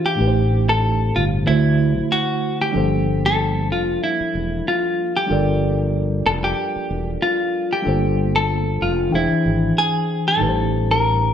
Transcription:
Already playing: tine electric piano E3 D4 G4 G#4 C5
0.06 clean electric guitar G4
0.15 tine electric piano A2 A3 D#4
0.20 fretless electric bass A1, tine electric piano G4 B4
0.28 tine electric piano C5
0.69 clean electric guitar A4
1.16 fretless electric bass G1, clean electric guitar F4
1.44 tine electric piano D3 A3 E4, clean electric guitar E4
1.48 fretless electric bass D2, tine electric piano F#4 C5
2.12 clean electric guitar F#4
2.62 clean electric guitar G4
2.71 tine electric piano F3 G3 D4 A4
2.76 fretless electric bass G1, tine electric piano A#3 C5
3.26 clean electric guitar A4
3.71 fretless electric bass F1, clean electric guitar F4
4.04 clean electric guitar E4
4.21 muted fretless electric bass stroke
4.35 fretless electric bass E1
4.68 clean electric guitar F4
5.17 clean electric guitar G4
5.27 tine electric piano G3 D4 F4 A4
5.31 fretless electric bass G1, tine electric piano A#4 D5
6.26 fretless electric bass F1, clean electric guitar A4
6.44 clean electric guitar G4
6.76 muted fretless electric bass stroke
6.91 fretless electric bass E1
7.22 clean electric guitar F4
7.73 clean electric guitar G4
7.82 tine electric piano G3 D4 F4 A4
7.87 fretless electric bass G1, tine electric piano A#3 C5
8.36 clean electric guitar A4
8.82 fretless electric bass F1, clean electric guitar F4
9.09 tine electric piano E3 D4 G5
9.14 fretless electric bass E1, clean electric guitar E4, tine electric piano G#4 C5
9.31 muted fretless electric bass stroke
9.46 fretless electric bass G#1
9.78 clean electric guitar G#4
10.28 clean electric guitar A4
10.36 tine electric piano A2 G3 D#4
10.41 fretless electric bass A1, tine electric piano G4 B4
10.49 tine electric piano C5
10.91 clean electric guitar A#4

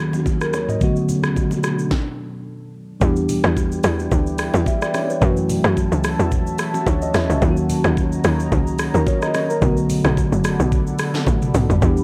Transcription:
Already playing: ambient pad D#2 D#3 C#4 F#4, tine electric piano D#3 F#3 A#3 C#4 F#4
0.13 low bongo, shaker
0.26 kick, high bongo, shaker
0.41 tine electric piano A#4, cross-stick, shaker
0.53 tine electric piano C#5, cross-stick, low bongo, shaker
0.69 tine electric piano D#5, mid tom, shaker
0.79 tine electric piano D3 F#3 A3 B3, kick, low conga, shaker
0.84 tine electric piano F#4
0.96 shaker
1.09 low conga, shaker
1.23 cross-stick, shaker
1.36 kick, high bongo, shaker
1.51 low bongo, shaker
1.63 cross-stick, high bongo, shaker
1.79 shaker
1.91 kick, snare
3.00 log drum bass E2, tine electric piano E3 G3 B3 D4, ambient pad E4 B4 D5 G5, kick, low conga, shaker
3.04 tine electric piano G4
3.16 shaker
3.29 open hi-hat, low conga, shaker
3.44 log drum bass E2, cross-stick, shaker
3.57 kick, high bongo, shaker
3.72 shaker
3.84 log drum bass E2, cross-stick, open hi-hat, shaker
3.99 high bongo, shaker
4.12 log drum bass D2, kick, low conga, shaker
4.27 shaker
4.38 cross-stick, open hi-hat, shaker
4.54 log drum bass E2, low bongo, shaker
4.66 tine electric piano E5, kick, high bongo, shaker
4.82 tine electric piano D5, cross-stick, shaker
4.94 tine electric piano C#5, cross-stick, open hi-hat, low bongo, shaker
5.10 tine electric piano B4, shaker
5.20 log drum bass F#2, tine electric piano E3 F#3 A3 C#4, ambient pad F#4 C#5 E5 A5, kick, low conga, shaker
5.24 tine electric piano F#4
5.37 shaker
5.49 open hi-hat, low conga, shaker
5.64 log drum bass F#2, cross-stick, shaker
5.77 kick, high bongo, shaker
5.92 log drum bass C#2, shaker
6.04 cross-stick, open hi-hat, shaker
6.19 log drum bass E2, high bongo, shaker
6.32 kick, low conga, shaker
6.47 shaker
6.58 cross-stick, open hi-hat, shaker
6.74 low bongo, shaker
6.86 log drum bass D2, tine electric piano C#5, kick, high bongo, shaker
7.02 tine electric piano D#5, shaker
7.14 log drum bass E2, tine electric piano E5, cross-stick, snare, open hi-hat, low bongo, shaker
7.30 log drum bass C#2, tine electric piano C#5, shaker
7.40 log drum bass D#2, tine electric piano D#3 F#3 A#3 C#4, ambient pad D#5 A#5, kick, low conga, shaker
7.45 tine electric piano F4
7.51 tine electric piano F#4
7.57 shaker
7.69 open hi-hat, low conga, shaker
7.84 log drum bass D#2, cross-stick, shaker
7.97 kick, high bongo, shaker
8.12 shaker
8.24 log drum bass D#2, cross-stick, open hi-hat, shaker
8.40 high bongo, shaker
8.52 log drum bass C#2, kick, low conga, shaker
8.67 shaker
8.79 cross-stick, open hi-hat, shaker
8.94 log drum bass D#2, tine electric piano A#4, low bongo, shaker
9.07 tine electric piano C#5, kick, high bongo, shaker
9.22 tine electric piano D#5, cross-stick, shaker
9.34 tine electric piano C#5, cross-stick, open hi-hat, low bongo, shaker
9.50 tine electric piano A#4, shaker
9.60 log drum bass B1, tine electric piano D3 F#3 A3 B3, ambient pad A4 D5 F#5 B5, kick, low conga, shaker
9.65 tine electric piano F#4
9.77 shaker
9.89 open hi-hat, low conga, shaker
10.04 log drum bass B1, cross-stick, shaker
10.17 kick, high bongo, shaker
10.32 log drum bass F#1, shaker
10.44 cross-stick, open hi-hat, shaker
10.60 log drum bass B1, high bongo, shaker
10.72 kick, low conga, shaker
10.87 shaker
10.99 cross-stick, open hi-hat, shaker
11.14 snare, low bongo, shaker
11.26 log drum bass A1, kick, high tom, high bongo, shaker
11.42 mid tom, shaker
11.54 log drum bass B1, mid tom, open hi-hat, low bongo, shaker
11.70 log drum bass G1, floor tom, shaker
11.81 log drum bass E2, tine electric piano E3 G3 B3 D4, kick, low conga, shaker
11.85 tine electric piano G4
11.97 shaker

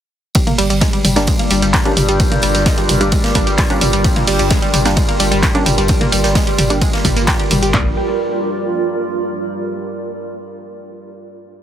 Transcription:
0.35 synth drone G2 G3, synth arpeggio sound G3, ambient pad F4, kick, closed hi-hat, ride, tambourine
0.47 synth arpeggio sound A#3, closed hi-hat, mid tom
0.58 sub bass G1, synth arpeggio sound G3, open hi-hat, tambourine
0.67 sub bass G1, synth arpeggio sound G3, ambient pad D5, closed hi-hat, tambourine
0.81 synth arpeggio sound G#3, kick, snare, closed hi-hat, ride, tambourine
0.93 synth arpeggio sound G3, closed hi-hat
1.05 sub bass G1, synth arpeggio sound G3, open hi-hat, mid tom, tambourine
1.13 sub bass G1, synth stab G3 A#3 D4, synth arpeggio sound G3, ambient pad A#4, snare, closed hi-hat, tambourine
1.27 synth arpeggio sound G#3, kick, closed hi-hat, ride, tambourine
1.39 synth arpeggio sound A#3, closed hi-hat
1.50 sub bass G1, synth arpeggio sound G3, open hi-hat, tambourine
1.62 sub bass G1, synth arpeggio sound G3, closed hi-hat, tambourine
1.74 synth arpeggio sound G3, kick, snare, clap, closed hi-hat, ride, tambourine
1.85 synth stab G3 A#3 D4, synth arpeggio sound C#4, closed hi-hat
1.97 sub bass G1, synth arpeggio sound G3, open hi-hat, mid tom, tambourine
2.09 sub bass G1, synth arpeggio sound G3, closed hi-hat, tambourine
2.20 synth arpeggio sound G3, kick, closed hi-hat, ride, tambourine
2.32 synth arpeggio sound A#3, closed hi-hat, mid tom
2.42 sub bass G1, synth arpeggio sound G3, open hi-hat, tambourine
2.55 sub bass G1, synth arpeggio sound G3, snare, closed hi-hat, tambourine
2.66 synth arpeggio sound G#3, kick, snare, closed hi-hat, ride, tambourine
2.78 synth arpeggio sound G3, closed hi-hat
2.89 sub bass G1, synth arpeggio sound G3, open hi-hat, mid tom, tambourine
3.01 sub bass G1, synth stab G3 A#3 D4, synth arpeggio sound G3, closed hi-hat, tambourine
3.12 synth arpeggio sound G#3, kick, closed hi-hat, ride, tambourine
3.24 synth arpeggio sound A#3, snare, closed hi-hat
3.35 sub bass G1, synth arpeggio sound G3, synth stab G3 A#3 D4, kick, open hi-hat, tambourine
3.47 sub bass G1, synth arpeggio sound G3, closed hi-hat, tambourine
3.58 synth arpeggio sound G3, kick, snare, clap, open hi-hat, ride, tambourine
3.70 synth stab G3 A#3 D4, synth arpeggio sound C#4, closed hi-hat
3.81 sub bass G1, synth arpeggio sound G3, open hi-hat, mid tom, tambourine
3.93 sub bass G1, synth arpeggio sound G3, closed hi-hat, tambourine
4.04 synth arpeggio sound G3, kick, closed hi-hat, ride, tambourine
4.16 synth arpeggio sound A#3, closed hi-hat, mid tom
4.27 sub bass G1, synth arpeggio sound G3, open hi-hat, tambourine
4.39 sub bass G1, synth arpeggio sound G3, closed hi-hat, tambourine
4.50 synth arpeggio sound G#3, kick, snare, closed hi-hat, ride, tambourine
4.62 synth arpeggio sound G3, closed hi-hat
4.74 sub bass G1, synth arpeggio sound G3, open hi-hat, mid tom, tambourine
4.85 sub bass G1, synth arpeggio sound G3, synth stab G3 A#3 D4, snare, closed hi-hat, tambourine
4.96 synth arpeggio sound G#3, kick, closed hi-hat, ride, tambourine
5.08 synth arpeggio sound A#3, closed hi-hat
5.20 sub bass G1, synth arpeggio sound G3, open hi-hat, tambourine
5.32 sub bass G1, synth arpeggio sound G3, closed hi-hat, tambourine
5.43 kick, snare, clap, closed hi-hat, ride, tambourine
5.54 synth stab G3 A#3 D4, synth arpeggio sound C#4, closed hi-hat
5.66 sub bass G1, synth arpeggio sound G3, open hi-hat, mid tom, tambourine
5.78 sub bass G1, synth arpeggio sound G3, closed hi-hat, tambourine
5.88 synth arpeggio sound G3, kick, closed hi-hat, ride, tambourine
6.01 synth arpeggio sound A#3, closed hi-hat, mid tom
6.12 sub bass G1, synth arpeggio sound G3, open hi-hat, tambourine
6.24 sub bass G1, synth arpeggio sound G3, snare, closed hi-hat, tambourine
6.35 synth arpeggio sound G#3, kick, snare, closed hi-hat, ride, tambourine
6.47 synth arpeggio sound G3, closed hi-hat
6.58 sub bass G1, synth arpeggio sound G3, open hi-hat, mid tom, tambourine
6.70 sub bass G1, synth stab G3 A#3 D4, synth arpeggio sound G3, closed hi-hat, tambourine
6.81 synth arpeggio sound G#3, kick, closed hi-hat, ride, tambourine
6.93 synth arpeggio sound A#3, snare, closed hi-hat
7.05 sub bass G1, synth arpeggio sound G3, kick, open hi-hat, mid tom, tambourine
7.16 sub bass G1, synth arpeggio sound A#3, closed hi-hat, tambourine
7.27 synth arpeggio sound G4, kick, snare, clap, open hi-hat, ride, tambourine
7.39 synth arpeggio sound G4, closed hi-hat
7.51 sub bass G1, synth arpeggio sound G3, open hi-hat, mid tom, tambourine
7.62 sub bass G1, synth arpeggio sound G4, closed hi-hat, tambourine
7.74 sub bass G1, synth stab G3 A#3 D4, synth arpeggio sound G3, ambient pad F4, kick, clap, floor tom
7.81 ambient pad A#4
7.88 ambient pad D5

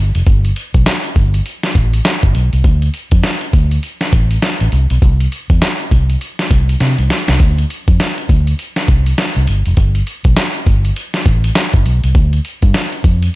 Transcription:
Already playing: fingered electric bass G1
0.15 fingered electric bass F1, closed hi-hat
0.26 fingered electric bass G1, kick, closed hi-hat
0.45 closed hi-hat
0.56 closed hi-hat
0.74 fingered electric bass B1, kick, closed hi-hat
0.86 snare, closed hi-hat
1.04 closed hi-hat
1.16 fingered electric bass G1, kick, closed hi-hat
1.34 closed hi-hat
1.46 closed hi-hat
1.63 snare, closed hi-hat
1.75 fingered electric bass A1, kick, closed hi-hat
1.93 closed hi-hat
2.05 snare, closed hi-hat
2.23 fingered electric bass G1, kick, closed hi-hat
2.35 fingered electric bass B1, closed hi-hat
2.53 fingered electric bass C2, closed hi-hat
2.64 fingered electric bass D2, kick, closed hi-hat
2.82 closed hi-hat
2.94 closed hi-hat
3.11 fingered electric bass F2, kick, closed hi-hat
3.23 snare, closed hi-hat
3.41 closed hi-hat
3.53 fingered electric bass D2, kick, closed hi-hat
3.71 closed hi-hat
3.83 closed hi-hat
4.01 snare, closed hi-hat
4.13 fingered electric bass A1, kick, closed hi-hat
4.31 closed hi-hat
4.42 snare, closed hi-hat
4.60 fingered electric bass A1, closed hi-hat
4.72 fingered electric bass C2, closed hi-hat
4.90 fingered electric bass B1, closed hi-hat
5.02 fingered electric bass C2, kick, closed hi-hat
5.20 closed hi-hat
5.32 closed hi-hat
5.50 fingered electric bass E2, kick, closed hi-hat
5.62 snare, closed hi-hat
5.80 closed hi-hat
5.91 fingered electric bass C2, kick, closed hi-hat
6.10 closed hi-hat
6.21 closed hi-hat
6.39 snare, closed hi-hat
6.51 fingered electric bass C2, kick, closed hi-hat
6.69 closed hi-hat
6.80 fingered electric bass C3, snare, closed hi-hat
6.98 fingered electric bass C2, closed hi-hat
7.10 snare, closed hi-hat
7.28 fingered electric bass C2, snare, closed hi-hat
7.40 fingered electric bass D2, kick, closed hi-hat
7.58 closed hi-hat
7.70 closed hi-hat
7.88 fingered electric bass F2, kick, closed hi-hat
8.00 snare, closed hi-hat
8.18 closed hi-hat
8.29 fingered electric bass D2, kick, closed hi-hat
8.47 closed hi-hat
8.59 closed hi-hat
8.76 snare, closed hi-hat
8.88 fingered electric bass C2, kick, closed hi-hat
9.06 closed hi-hat
9.18 snare, closed hi-hat
9.36 fingered electric bass C2, closed hi-hat
9.47 fingered electric bass G1, closed hi-hat
9.66 fingered electric bass F1, closed hi-hat
9.77 fingered electric bass G1, kick, closed hi-hat
9.95 closed hi-hat
10.07 closed hi-hat
10.24 fingered electric bass B1, kick, closed hi-hat
10.36 snare, closed hi-hat
10.54 closed hi-hat
10.67 fingered electric bass G1, kick, closed hi-hat
10.85 closed hi-hat
10.96 closed hi-hat
11.14 snare, closed hi-hat
11.26 fingered electric bass A1, kick, closed hi-hat
11.44 closed hi-hat
11.55 snare, closed hi-hat
11.73 fingered electric bass G1, kick, closed hi-hat
11.86 fingered electric bass B1, closed hi-hat
12.04 fingered electric bass C2, closed hi-hat
12.15 fingered electric bass D2, kick, closed hi-hat
12.33 closed hi-hat
12.45 closed hi-hat
12.62 fingered electric bass G2, kick, closed hi-hat
12.74 snare, closed hi-hat
12.92 closed hi-hat
13.04 fingered electric bass F2, kick, closed hi-hat
13.22 closed hi-hat

